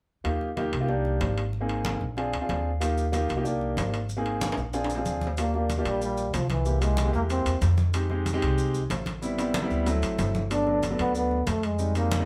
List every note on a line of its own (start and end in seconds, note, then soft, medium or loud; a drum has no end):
0.24 0.69 D#2 medium
0.24 0.47 A#3 medium
0.24 0.47 D#4 medium
0.24 0.47 F4 medium
0.24 0.47 G4 medium
0.24 high conga soft
0.24 high timbale medium
0.41 high conga soft
0.57 0.74 A#3 medium
0.57 0.74 D#4 medium
0.57 0.74 F4 medium
0.57 0.74 G4 medium
0.57 high conga soft
0.57 high timbale medium
0.57 low timbale medium
0.72 1.17 C2 medium
0.72 high conga soft
0.72 high timbale medium
0.80 0.86 A#3 medium
0.80 0.87 D#4 medium
0.80 0.89 F4 medium
0.80 0.88 G4 medium
0.88 1.40 A#3 medium
0.88 1.40 D4 medium
0.88 1.40 D#4 medium
0.88 1.40 G4 medium
0.88 high conga soft
1.05 high conga soft
1.21 1.95 G#1 medium
1.21 high conga medium
1.21 high timbale medium
1.21 low timbale medium
1.38 high timbale medium
1.53 high conga soft
1.61 2.00 A#3 medium
1.61 2.00 C4 medium
1.61 2.00 D#4 medium
1.61 2.01 G#4 medium
1.69 high conga soft
1.69 high timbale medium
1.85 high conga medium
1.85 high timbale medium
1.85 low timbale soft
2.01 2.31 A#1 medium
2.01 high conga soft
2.17 2.34 C4 medium
2.17 2.34 D4 medium
2.17 2.34 F4 medium
2.17 2.34 G#4 medium
2.17 high conga soft
2.17 high timbale medium
2.33 2.48 D2 medium
2.33 high conga soft
2.33 high timbale medium
2.41 2.69 C4 medium
2.41 2.69 D4 medium
2.41 2.69 F4 medium
2.41 2.70 G#4 medium
2.49 3.24 D#2 medium
2.49 high conga medium
2.49 high timbale medium
2.49 low timbale medium
2.81 3.03 A#3 medium
2.81 3.03 D#4 medium
2.81 3.04 F4 medium
2.81 3.04 G4 medium
2.81 high conga soft
2.81 high timbale medium
2.81 maracas medium
2.98 high conga soft
2.98 maracas medium
3.12 3.30 A#3 medium
3.12 3.30 D#4 medium
3.12 3.30 F4 medium
3.12 3.30 G4 medium
3.12 high conga soft
3.12 high timbale medium
3.12 low timbale medium
3.12 maracas medium
3.29 3.74 C2 medium
3.29 high conga soft
3.29 high timbale medium
3.29 maracas soft
3.37 3.43 A#3 medium
3.37 3.44 D#4 medium
3.37 3.45 F4 medium
3.37 3.43 G4 medium
3.44 3.96 A#3 medium
3.44 3.96 D4 medium
3.44 3.96 D#4 medium
3.44 3.96 G4 medium
3.44 high conga soft
3.44 maracas medium
3.61 high conga soft
3.77 4.52 G#1 medium
3.77 high conga medium
3.77 high timbale medium
3.77 low timbale medium
3.77 maracas medium
3.94 high timbale medium
3.94 maracas soft
4.09 high conga soft
4.09 maracas medium
4.17 4.56 A#3 medium
4.17 4.56 C4 medium
4.17 4.57 D#4 medium
4.17 4.57 G#4 medium
4.26 high conga soft
4.26 high timbale medium
4.41 high conga medium
4.41 high timbale medium
4.41 maracas medium
4.52 high timbale medium
4.57 5.02 A#1 medium
4.57 high conga soft
4.57 maracas soft
4.73 4.90 C4 medium
4.73 4.90 D4 medium
4.73 4.91 F4 medium
4.73 4.91 G#4 medium
4.73 high conga soft
4.73 high timbale medium
4.73 maracas medium
4.84 high timbale medium
4.89 high conga soft
4.89 maracas medium
4.95 5.25 C4 medium
4.95 5.26 D4 medium
4.95 5.26 F4 medium
4.95 5.26 G#4 medium
4.95 low timbale medium
5.05 5.80 D#2 medium
5.05 high conga medium
5.05 maracas medium
5.21 high conga medium
5.21 maracas soft
5.27 low timbale medium
5.37 5.49 A#3 medium
5.37 5.69 A#3 medium
5.37 5.49 D4 medium
5.37 5.49 F4 medium
5.37 5.49 G4 medium
5.37 high conga soft
5.37 high timbale medium
5.37 maracas medium
5.54 5.71 A#3 medium
5.54 5.71 D4 medium
5.54 5.71 F4 medium
5.54 5.71 G4 medium
5.54 high conga soft
5.70 high conga medium
5.70 high timbale medium
5.70 low timbale medium
5.70 maracas medium
5.78 6.23 A#3 medium
5.78 6.23 D4 medium
5.78 6.23 F4 medium
5.78 6.23 G4 medium
5.85 6.30 A#1 medium
5.85 6.02 G3 medium
5.85 high conga soft
5.85 high timbale medium
5.85 maracas soft
6.02 6.37 G3 medium
6.02 high conga soft
6.02 maracas medium
6.17 high conga soft
6.17 maracas medium
6.33 7.08 C2 medium
6.33 6.50 F3 medium
6.33 high conga medium
6.33 high timbale medium
6.33 low timbale medium
6.33 maracas medium
6.50 6.84 E3 medium
6.50 high conga medium
6.50 high timbale medium
6.50 maracas soft
6.65 6.77 G#3 medium
6.65 6.77 A#3 medium
6.65 6.77 E4 medium
6.65 6.77 G4 medium
6.65 high conga soft
6.65 maracas medium
6.81 6.99 G#3 medium
6.81 7.14 G#3 loud
6.81 6.99 A#3 medium
6.81 6.99 E4 medium
6.81 6.99 G4 medium
6.81 high conga soft
6.81 high timbale medium
6.81 maracas medium
6.97 high conga medium
6.97 high timbale medium
6.97 low timbale medium
6.97 maracas medium
7.05 7.51 G#3 medium
7.05 7.51 A#3 medium
7.05 7.51 E4 medium
7.05 7.51 G4 medium
7.13 7.43 E2 medium
7.13 7.22 A#3 medium
7.13 high conga soft
7.13 maracas soft
7.30 7.61 C4 medium
7.30 high conga soft
7.30 high timbale medium
7.30 maracas medium
7.45 7.61 E2 medium
7.45 high conga soft
7.45 high timbale medium
7.45 maracas medium
7.61 8.36 F2 medium
7.61 high conga medium
7.61 high timbale medium
7.61 low timbale medium
7.61 maracas medium
7.77 high conga medium
7.77 maracas soft
7.94 8.05 G#3 medium
7.94 8.05 C4 medium
7.94 8.05 D#4 medium
7.94 8.06 G4 medium
7.94 high conga soft
7.94 high timbale medium
7.94 maracas medium
8.10 8.27 G#3 medium
8.10 8.27 C4 medium
8.10 8.27 D#4 medium
8.10 8.27 G4 medium
8.10 high conga soft
8.26 high conga medium
8.26 high timbale medium
8.26 low timbale medium
8.26 maracas medium
8.33 8.79 G#3 medium
8.33 8.79 C4 medium
8.33 8.79 D#4 medium
8.33 8.79 G4 loud
8.42 8.87 C2 medium
8.42 high conga soft
8.42 high timbale medium
8.42 maracas soft
8.58 high conga soft
8.58 maracas medium
8.74 high conga soft
8.74 maracas medium
8.90 9.65 A1 medium
8.90 high conga medium
8.90 high timbale medium
8.90 low timbale medium
8.90 maracas medium
9.06 high conga medium
9.06 high timbale medium
9.06 maracas soft
9.22 9.33 G3 medium
9.22 9.34 B3 medium
9.22 9.34 C4 medium
9.22 9.34 E4 medium
9.22 high conga soft
9.22 maracas medium
9.37 9.55 G3 medium
9.37 9.55 B3 medium
9.37 9.55 C4 medium
9.37 9.55 E4 medium
9.37 high conga soft
9.37 high timbale medium
9.37 maracas medium
9.54 high conga medium
9.54 high timbale medium
9.54 low timbale medium
9.54 maracas medium
9.62 9.86 G3 medium
9.62 9.86 B3 medium
9.62 9.85 C4 medium
9.62 9.85 E4 loud
9.70 10.00 D2 medium
9.70 high conga soft
9.70 maracas soft
9.86 10.38 F#3 medium
9.86 10.38 A3 medium
9.86 10.38 C4 medium
9.86 10.38 E4 medium
9.86 high conga soft
9.86 high timbale medium
9.86 maracas medium
10.02 10.17 A1 medium
10.02 high conga soft
10.02 high timbale medium
10.02 maracas medium
10.18 10.93 G1 medium
10.18 high conga medium
10.18 high timbale medium
10.18 low timbale medium
10.18 maracas medium
10.34 high conga medium
10.34 maracas soft
10.50 10.62 F#3 medium
10.50 10.62 A3 medium
10.50 10.62 B3 medium
10.50 10.62 D4 medium
10.50 10.81 D4 medium
10.50 high conga soft
10.50 high timbale medium
10.50 maracas medium
10.66 10.83 F#3 medium
10.66 10.84 A3 medium
10.66 10.84 B3 medium
10.66 10.84 D4 medium
10.66 high conga soft
10.83 high conga medium
10.83 high timbale medium
10.83 low timbale medium
10.83 maracas medium
10.90 11.35 F#3 medium
10.90 11.36 A3 medium
10.90 11.36 B3 medium
10.90 11.36 D4 medium
10.99 11.44 D2 medium
10.99 11.15 B3 medium
10.99 high conga soft
10.99 high timbale medium
10.99 maracas soft
11.15 11.50 B3 medium
11.15 high conga soft
11.15 maracas medium
11.31 high conga soft
11.47 12.21 F2 medium
11.47 11.66 A3 medium
11.47 high conga medium
11.47 high timbale medium
11.47 low timbale medium
11.47 maracas medium
11.63 11.96 G#3 medium
11.63 high timbale medium
11.63 maracas soft
11.79 11.90 G3 medium
11.79 11.90 G#3 medium
11.79 11.90 C4 medium
11.79 11.90 D#4 medium
11.79 high conga soft
11.79 maracas medium
11.95 12.12 G3 medium
11.95 12.12 G#3 medium
11.95 12.25 A#3 medium
11.95 12.12 C4 medium
11.95 12.12 D#4 medium
11.95 high conga soft
11.95 high timbale medium
11.95 maracas medium
12.11 high conga medium
12.11 high timbale medium
12.11 low timbale medium
12.11 maracas medium
12.19 12.25 G3 medium
12.19 12.25 G#3 medium
12.19 12.25 C4 medium
12.19 12.25 D#4 medium